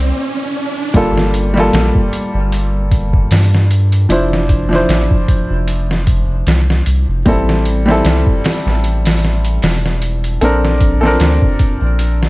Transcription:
Already playing: sub bass C2, upright piano A#3 E4 G4 C5, synth texture D5, riser
0.94 sub bass G1, upright piano G3 A#3 F4 A4, kick, closed hi-hat
1.17 snare
1.34 closed hi-hat
1.54 upright piano G3 A#3, snare
1.58 upright piano F4 A4
1.73 sub bass A#1, snare, closed hi-hat
1.95 kick
2.13 closed hi-hat
2.34 sub bass G1
2.52 closed hi-hat
2.91 kick, closed hi-hat
3.13 kick
3.31 sub bass G2, snare, open hi-hat
3.54 snare
3.71 closed hi-hat
3.92 closed hi-hat
4.09 sub bass F1, upright piano F3 D4 E4 C5, closed hi-hat
4.33 snare
4.49 kick, closed hi-hat
4.69 upright piano F3 D4, snare
4.73 upright piano E4 C5
4.89 sub bass A1, snare, closed hi-hat
5.11 kick
5.28 kick, closed hi-hat
5.50 sub bass F1
5.68 closed hi-hat
5.91 snare
6.07 kick, closed hi-hat
6.47 sub bass C2, snare, closed hi-hat
6.70 snare
6.86 sub bass C2, closed hi-hat
7.08 sub bass F1
7.25 sub bass A1, upright piano G3 C4 E4 A4, kick, closed hi-hat
7.49 snare
7.65 closed hi-hat
7.86 upright piano G3 C4 E4, snare
7.92 upright piano A4
8.05 sub bass C2, snare, closed hi-hat
8.27 kick
8.44 snare, open hi-hat
8.66 sub bass A1, snare
8.84 closed hi-hat
9.05 snare, open hi-hat
9.25 snare
9.45 closed hi-hat
9.62 sub bass E1, snare, open hi-hat
9.86 snare
10.02 closed hi-hat
10.24 closed hi-hat
10.41 sub bass A#1, upright piano C4 D4 A4 A#4, closed hi-hat
10.65 snare
10.81 kick, closed hi-hat
11.01 upright piano C4 A4, snare
11.05 upright piano D4 A#4
11.20 sub bass D2, snare, closed hi-hat
11.42 kick
11.59 kick, closed hi-hat
11.81 sub bass A#1
11.99 closed hi-hat
12.23 snare

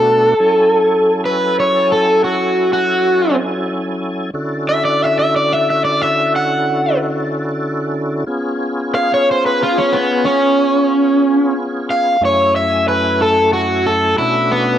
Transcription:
Already playing: tonewheel organ B2 A3 B3 D4 F#4, overdriven electric guitar A4
0.40 tonewheel organ F#3 C#4 E4 A4 G#5
1.25 overdriven electric guitar B4
1.60 overdriven electric guitar C#5
1.92 overdriven electric guitar A4
2.24 overdriven electric guitar F#4
2.73 overdriven electric guitar F#4
4.34 tonewheel organ D3 C#4 E4 F#4 A4
4.69 overdriven electric guitar E5
4.85 overdriven electric guitar D5
5.04 overdriven electric guitar E5
5.19 overdriven electric guitar E5
5.36 overdriven electric guitar D5
5.53 overdriven electric guitar E5
5.70 overdriven electric guitar E5
5.85 overdriven electric guitar D5
6.02 overdriven electric guitar E5
6.36 overdriven electric guitar F#5
8.26 tonewheel organ B3 C#4 F4 G#4
8.95 overdriven electric guitar F5
9.14 overdriven electric guitar C#5
9.31 overdriven electric guitar C5
9.46 overdriven electric guitar B4
9.63 overdriven electric guitar F4
9.78 overdriven electric guitar C#4
9.92 overdriven electric guitar B3
10.25 overdriven electric guitar C#4
11.91 overdriven electric guitar F5
12.21 tonewheel organ F#2 A3 C#4 E4 G#5
12.25 overdriven electric guitar C#5
12.56 overdriven electric guitar E5
12.88 overdriven electric guitar B4
13.22 overdriven electric guitar A4
13.53 overdriven electric guitar F#4
13.86 overdriven electric guitar A4
14.18 tonewheel organ B2 A3 C#4 D4 F#4, overdriven electric guitar E4
14.52 overdriven electric guitar B3

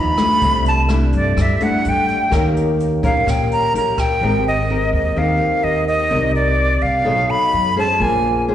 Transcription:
Already playing: upright bass D#2, nylon-string guitar G2 F3 B3 D#4, vibraphone F4 G4 B4 D#5
0.00 flute B5
0.17 nylon-string guitar A3 D4 E4, cross-stick, closed hi-hat
0.38 vibraphone G4 A4, kick, closed hi-hat
0.42 upright bass C2, nylon-string guitar C3, vibraphone D5 E5
0.65 flute A5, closed hi-hat
0.89 nylon-string guitar A3 D4 E4, cross-stick, closed hi-hat
1.13 upright bass G2, flute D5, closed hi-hat
1.37 upright bass G2, nylon-string guitar G3, kick, cross-stick, closed hi-hat
1.42 flute E5
1.60 nylon-string guitar A3 D4 E4, flute F#5, closed hi-hat
1.85 upright bass G2, closed hi-hat
1.89 flute G5
2.09 closed hi-hat
2.29 upright bass D#2, nylon-string guitar D#3 C#4 G4 A#4, vibraphone G4 A#4 C#5, kick, cross-stick, closed hi-hat
2.35 vibraphone F5
2.56 closed hi-hat
2.80 closed hi-hat
3.03 upright bass A#1, nylon-string guitar C#4 G4 A#4, flute F5, kick, closed hi-hat
3.27 upright bass A#1, nylon-string guitar A#2, flute G5, kick, cross-stick, closed hi-hat
3.49 vibraphone G4 A#4 C#5 F5, flute A#5, closed hi-hat
3.74 upright bass A#1, nylon-string guitar C#4 G4 A#4, flute A#5, closed hi-hat
3.98 flute G5, kick, cross-stick, closed hi-hat
4.18 upright bass G#1, vibraphone G4 A#4 C5
4.22 nylon-string guitar G#3 C4 G4 A#4, vibraphone D#5
4.48 flute D#5
4.70 nylon-string guitar C4 G4 A#4
4.93 upright bass D#2, flute D#5
5.16 upright bass D#2, nylon-string guitar D#3 C4 G4 A#4, flute F5
5.38 vibraphone G4 A#4 C5 D#5
5.64 upright bass D#2, flute D#5
5.88 flute D#5
6.07 upright bass C2, nylon-string guitar C4 D#4 A#4, vibraphone G4 A#4 D5
6.12 nylon-string guitar D5
6.35 flute D5
6.82 upright bass C2, flute F5
7.02 nylon-string guitar B3 D#4 A4 C#5, vibraphone F#4 A4
7.06 upright bass B1, vibraphone C#5 D#5
7.30 flute B5
7.53 upright bass F#2
7.76 nylon-string guitar C#4 G#4 C5, flute A5
7.96 upright bass A#1, nylon-string guitar A#3, vibraphone F4 G#4
8.00 vibraphone C5, flute G#5
8.48 nylon-string guitar C#4 G#4 C5

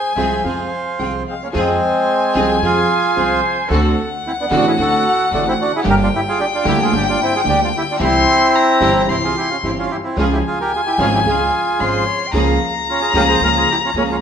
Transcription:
Already playing: bandoneon G#4 C5, violin G#5
0.16 upright bass C2, grand piano C2 C3 F3 G#3 C4 G#4, string section C4 F4 G#4, bandoneon C5 E5
0.44 grand piano F2 F3 G#3 C4 G#4, upright bass F2, string section C4 F4 G#4, bandoneon C5 F5
0.99 grand piano C2 C3 F3 G#3 C4 G#4, upright bass C2, string section C4 F4 G#4, violin G5
1.26 bandoneon G#3 C4, violin F5
1.43 bandoneon A#3 C#4
1.53 grand piano F2 F3 G#3 C4 G#4, upright bass F2, string section C4 F4 G#4, violin G#5
1.57 bandoneon G#3 C4
2.35 upright bass C2, grand piano C2 C3 F3 G#3 C4 G#4, string section C4 F4 G#4
2.62 upright bass F2, grand piano F2 F3 G#3 C4 G#4, string section C4 F4 G#4, bandoneon F4 G#4
3.15 grand piano C2 C3 F3 G#3 C4 G#4, upright bass C2, string section C4 F4 G#4, flute C5
3.69 upright bass D2, grand piano D2 D3 A3 C4 F#4, string section C4 D4 F#4, flute A4, violin F#5
4.27 bandoneon C4 E4
4.41 bandoneon B3 D4
4.50 grand piano A1 A2 D3 A3 C4 F#4, upright bass A1, string section C4 D4 F#4
4.55 bandoneon D4 F#4
4.67 bandoneon E4 G#4
4.77 upright bass D2, grand piano D2 D3 A3 C4 F#4, string section C4 D4 F#4, bandoneon F#4
4.82 bandoneon A4
5.30 upright bass A1, grand piano A2 D3 A3 C4, bandoneon A3 D4, string section C4 D4 F#4
5.34 grand piano A1 F#4
5.48 bandoneon C4 E4
5.61 bandoneon D4 F#4
5.76 bandoneon E4 G#4
5.83 grand piano G1 G2 D3 G3 A#3 G4, upright bass G1, string section A#3 D4 G4, violin G5
5.90 bandoneon G4 A#4
6.03 bandoneon D4 F4
6.15 bandoneon E4 G4
6.28 bandoneon F4 G#4
6.40 bandoneon D4 G4
6.54 bandoneon D4 F4
6.64 grand piano D2 D3 G3 A#3 G4, upright bass D2, string section A#3 D4 G4, bandoneon E4
6.68 bandoneon G4
6.82 bandoneon F4 G#4
6.91 grand piano G1 G2 D3 G3 A#3 G4, upright bass G1, string section A#3 D4 G4
6.96 bandoneon D4 G4
7.09 bandoneon D4 F4
7.22 bandoneon C4 E4
7.36 bandoneon F4 G#4
7.44 grand piano D2 D3 G3 A#3 G4, upright bass D2, string section A#3 D4 G4
7.49 bandoneon D4 G4
7.64 bandoneon D4 F4
7.78 bandoneon E4 G4
7.91 bandoneon D4 F4
7.99 grand piano C2 C3 E3 G3 C4 G4, upright bass C2, string section C4 E4 G4, violin C6
8.03 bandoneon C4 E4
8.56 violin A#5
8.80 upright bass G1, grand piano G1 G2 E3 G3 C4 G4, string section C4 E4 G4
9.07 grand piano C2 C3 E3 G3 C4 G4, upright bass C2, string section C4 E4 G4, bandoneon C4 E4, violin C6
9.24 bandoneon F4 G#4
9.37 bandoneon E4 G4
9.50 bandoneon C#4 F4
9.63 upright bass G1, grand piano G1 G2 E3 G3 C4 G4, string section C4 E4 G4, bandoneon C4 E4
9.79 bandoneon C#4 F4
9.91 bandoneon E4 G4
10.04 bandoneon C4 E4
10.17 upright bass C#2, grand piano C#2 C#3 F3 G#3 C#4 G#4, string section C#4 F4 G#4, bandoneon C#4 F4, violin G#5
10.33 bandoneon E4 G4
10.47 bandoneon F4 G#4
10.61 bandoneon G4 A#4
10.75 bandoneon F4 G#4
10.86 bandoneon E4 G4
10.98 upright bass G#1, grand piano G#1 G#2 F3 G#3 C#4 G#4, string section C#4 F4 G#4, bandoneon C#4 F4
11.14 bandoneon E4 G4
11.25 upright bass C#2, grand piano C#2 C#3 F3 G#3 C#4 G#4, string section C#4 F4 G#4, bandoneon G#4
11.30 bandoneon F4
11.79 grand piano G#1 G#2 F3 G#3 C#4 G#4, upright bass G#1, string section C#4 F4 G#4, flute C5, violin C6
12.06 flute C#5
12.27 flute G5
12.33 upright bass C#2, grand piano C#2 C#3 F3 A#3 C#4 G#4, string section A#3 C#4 G#4, flute F5, violin A#5
12.89 bandoneon C#4 F4
13.01 bandoneon F4 G#4
13.14 upright bass C#2, grand piano C#2 C#3 F3 A#3 C#4 G#4, string section A#3 C#4 G#4, bandoneon G4 A#4
13.29 bandoneon G#4 C5
13.41 upright bass C#2, grand piano C#2 C#3 F3 A#3 C#4 G#4, string section A#3 C#4 G#4, bandoneon A#4
13.45 bandoneon F4
13.57 bandoneon F4 G#4
13.71 bandoneon E4 G4
13.85 bandoneon C#4 F4
13.94 upright bass C#2, grand piano C#2 C#3 F3 A#3 C#4 G#4, string section A#3 C#4 G#4, bandoneon A#3 C#4
14.11 bandoneon C#4 F4

